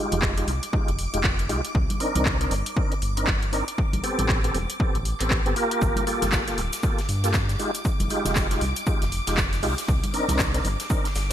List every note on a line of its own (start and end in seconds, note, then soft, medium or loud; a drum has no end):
0.00 0.34 G#3 medium
0.00 0.34 D#4 medium
0.00 0.34 F4 medium
0.00 0.34 G4 loud
0.00 5.80 D6 medium
0.12 0.44 F1 loud
0.12 closed hi-hat medium
0.12 high conga loud
0.12 low conga loud
0.22 kick loud
0.22 clap loud
0.37 0.51 G#3 medium
0.37 0.51 D#4 medium
0.37 0.51 F4 medium
0.37 0.51 G4 medium
0.37 closed hi-hat medium
0.47 0.60 C2 loud
0.47 open hi-hat loud
0.47 high conga medium
0.63 closed hi-hat medium
0.73 0.90 G#3 medium
0.73 0.91 D#4 medium
0.73 0.91 F4 medium
0.73 0.91 G4 medium
0.73 kick loud
0.88 1.07 F1 medium
0.88 closed hi-hat soft
0.99 open hi-hat loud
1.13 1.51 F1 medium
1.13 1.27 G#3 medium
1.13 1.27 D#4 medium
1.13 1.28 F4 medium
1.13 1.28 G4 medium
1.13 closed hi-hat medium
1.24 kick loud
1.24 clap loud
1.39 closed hi-hat soft
1.49 1.61 C2 medium
1.49 1.61 G#3 loud
1.49 1.61 D#4 medium
1.49 1.61 F4 medium
1.49 1.61 G4 loud
1.49 open hi-hat medium
1.65 closed hi-hat medium
1.75 1.87 C2 loud
1.75 kick loud
1.90 closed hi-hat medium
1.90 high conga medium
2.00 2.37 C4 medium
2.00 2.37 D4 medium
2.00 2.37 D#4 medium
2.00 2.37 A#4 loud
2.00 open hi-hat loud
2.15 2.48 C2 loud
2.15 closed hi-hat medium
2.15 high conga medium
2.15 low conga medium
2.25 kick loud
2.25 clap loud
2.41 2.54 C4 medium
2.41 2.55 D4 medium
2.41 2.55 D#4 medium
2.41 2.55 A#4 medium
2.41 closed hi-hat medium
2.51 2.63 G1 loud
2.51 open hi-hat medium
2.51 high conga medium
2.66 closed hi-hat medium
2.76 2.94 C4 medium
2.76 2.94 D4 medium
2.76 2.94 D#4 medium
2.76 2.94 A#4 medium
2.76 kick loud
2.92 closed hi-hat soft
3.02 3.63 G1 medium
3.02 open hi-hat loud
3.17 3.31 C4 medium
3.17 3.31 D4 medium
3.17 3.31 D#4 medium
3.17 3.31 A#4 medium
3.17 closed hi-hat medium
3.27 kick loud
3.27 clap loud
3.27 low conga medium
3.43 closed hi-hat soft
3.52 3.64 C4 loud
3.52 3.64 D4 medium
3.52 3.65 D#4 medium
3.52 3.65 A#4 loud
3.52 open hi-hat loud
3.68 closed hi-hat medium
3.78 kick loud
3.93 4.01 A1 loud
3.93 closed hi-hat medium
3.93 high conga medium
4.03 4.40 B3 medium
4.03 4.41 C4 medium
4.03 4.41 G4 medium
4.03 4.41 A4 loud
4.03 open hi-hat loud
4.19 4.51 A1 loud
4.19 closed hi-hat medium
4.19 high conga medium
4.19 low conga medium
4.29 kick loud
4.29 clap loud
4.44 4.58 B3 medium
4.44 4.58 C4 medium
4.44 4.58 G4 medium
4.44 4.58 A4 medium
4.44 closed hi-hat soft
4.54 4.66 E1 loud
4.54 open hi-hat loud
4.54 high conga medium
4.70 closed hi-hat medium
4.80 4.97 B3 medium
4.80 4.97 C4 medium
4.80 4.98 G4 medium
4.80 4.98 A4 medium
4.80 kick loud
4.95 5.14 A1 medium
4.95 closed hi-hat soft
5.05 open hi-hat loud
5.20 5.45 A1 loud
5.20 5.42 B3 medium
5.20 5.42 C4 medium
5.20 5.42 G4 medium
5.20 5.43 A4 medium
5.20 clap soft
5.20 closed hi-hat medium
5.30 kick loud
5.30 clap loud
5.46 5.54 G1 medium
5.46 5.54 B3 loud
5.46 5.55 C4 medium
5.46 5.55 G4 medium
5.46 5.55 A4 loud
5.46 closed hi-hat soft
5.56 6.04 A#3 loud
5.56 6.05 F4 medium
5.56 6.05 G4 medium
5.56 6.05 A#4 loud
5.56 open hi-hat loud
5.71 closed hi-hat medium
5.82 5.93 G1 loud
5.82 11.33 D6 medium
5.82 kick loud
5.82 cabasa medium
5.82 shaker medium
5.96 closed hi-hat medium
5.96 high conga medium
5.96 cabasa soft
6.07 6.44 A#3 medium
6.07 6.44 F4 medium
6.07 6.44 G4 medium
6.07 6.44 A4 loud
6.07 open hi-hat loud
6.07 shaker medium
6.22 6.54 G1 loud
6.22 snare soft
6.22 closed hi-hat medium
6.22 high conga medium
6.22 low conga medium
6.22 cabasa medium
6.32 kick loud
6.32 snare loud
6.32 clap loud
6.32 cabasa medium
6.32 shaker medium
6.47 6.61 A#3 medium
6.47 6.61 F4 medium
6.47 6.61 G4 medium
6.47 6.62 A4 medium
6.47 snare soft
6.47 closed hi-hat medium
6.47 cabasa soft
6.58 6.70 D1 loud
6.58 open hi-hat loud
6.58 high conga medium
6.58 shaker medium
6.73 snare soft
6.73 closed hi-hat medium
6.73 cabasa medium
6.83 7.01 A#3 medium
6.83 7.01 F4 medium
6.83 7.01 G4 medium
6.83 7.01 A4 medium
6.83 kick loud
6.83 cabasa medium
6.83 shaker medium
6.98 snare medium
6.98 closed hi-hat soft
6.98 cabasa soft
7.09 7.56 G2 medium
7.09 open hi-hat loud
7.09 shaker medium
7.24 7.37 A#3 medium
7.24 7.38 F4 medium
7.24 7.38 G4 medium
7.24 7.38 A4 medium
7.24 snare soft
7.24 closed hi-hat medium
7.24 cabasa medium
7.34 kick loud
7.34 snare loud
7.34 clap loud
7.34 low conga medium
7.34 cabasa medium
7.34 shaker medium
7.49 snare soft
7.49 closed hi-hat soft
7.49 cabasa soft
7.59 7.71 G#3 medium
7.59 7.71 D#4 medium
7.59 7.71 F4 medium
7.59 7.71 G4 loud
7.59 open hi-hat loud
7.59 shaker medium
7.74 closed hi-hat medium
7.74 cabasa medium
7.85 kick loud
7.85 cabasa medium
7.85 shaker medium
8.00 8.08 F1 loud
8.00 closed hi-hat soft
8.00 closed hi-hat medium
8.00 high conga medium
8.00 cabasa soft
8.10 8.47 G#3 medium
8.10 8.47 D#4 medium
8.10 8.47 F4 medium
8.10 8.48 G4 loud
8.10 open hi-hat loud
8.10 shaker medium
8.25 8.58 F1 loud
8.25 snare soft
8.25 closed hi-hat medium
8.25 high conga medium
8.25 low conga medium
8.25 cabasa medium
8.36 kick loud
8.36 snare loud
8.36 clap loud
8.36 cabasa medium
8.36 shaker medium
8.51 8.65 G#3 medium
8.51 8.65 D#4 medium
8.51 8.65 F4 medium
8.51 8.65 G4 medium
8.51 snare medium
8.51 closed hi-hat medium
8.51 cabasa soft
8.61 8.73 C2 loud
8.61 open hi-hat medium
8.61 high conga medium
8.61 shaker medium
8.76 closed hi-hat medium
8.76 cabasa medium
8.86 9.04 G#3 medium
8.86 9.04 D#4 medium
8.86 9.04 F4 medium
8.86 9.04 G4 medium
8.86 kick loud
8.86 cabasa medium
8.86 shaker medium
9.02 9.21 F1 medium
9.02 snare soft
9.02 closed hi-hat soft
9.02 cabasa soft
9.12 open hi-hat medium
9.12 shaker medium
9.27 9.64 F1 medium
9.27 9.41 G#3 medium
9.27 9.41 D#4 medium
9.27 9.41 F4 medium
9.27 9.41 G4 medium
9.27 snare soft
9.27 closed hi-hat medium
9.27 cabasa medium
9.37 kick loud
9.37 snare loud
9.37 clap loud
9.37 cabasa medium
9.37 shaker medium
9.53 snare medium
9.53 closed hi-hat soft
9.53 cabasa soft
9.62 9.75 C2 medium
9.62 9.74 G#3 loud
9.62 9.75 D#4 medium
9.62 9.75 F4 medium
9.62 9.75 G4 loud
9.62 open hi-hat medium
9.78 snare medium
9.78 closed hi-hat medium
9.78 cabasa medium
9.88 10.00 C2 loud
9.88 kick loud
9.88 cabasa medium
9.88 shaker medium
10.04 closed hi-hat medium
10.04 high conga medium
10.04 cabasa soft
10.13 10.51 C4 medium
10.13 10.51 D4 medium
10.13 10.51 D#4 medium
10.13 10.51 A#4 loud
10.13 open hi-hat loud
10.13 shaker medium
10.29 10.61 C2 loud
10.29 snare soft
10.29 closed hi-hat medium
10.29 high conga medium
10.29 low conga medium
10.29 cabasa medium
10.39 kick loud
10.39 snare loud
10.39 clap loud
10.39 cabasa medium
10.39 shaker medium
10.54 10.68 C4 medium
10.54 10.68 D4 medium
10.54 10.68 D#4 medium
10.54 10.68 A#4 medium
10.54 snare soft
10.54 closed hi-hat medium
10.54 cabasa soft
10.64 10.77 G1 loud
10.64 open hi-hat medium
10.64 high conga medium
10.64 shaker medium
10.80 snare medium
10.80 closed hi-hat medium
10.80 cabasa medium
10.90 11.07 C4 medium
10.90 11.08 D4 medium
10.90 11.08 D#4 medium
10.90 11.08 A#4 medium
10.90 kick loud
10.90 cabasa medium
10.90 shaker medium
11.05 snare medium
11.05 closed hi-hat soft
11.05 cabasa soft
11.15 11.33 G1 medium
11.15 snare loud
11.15 open hi-hat medium
11.15 shaker medium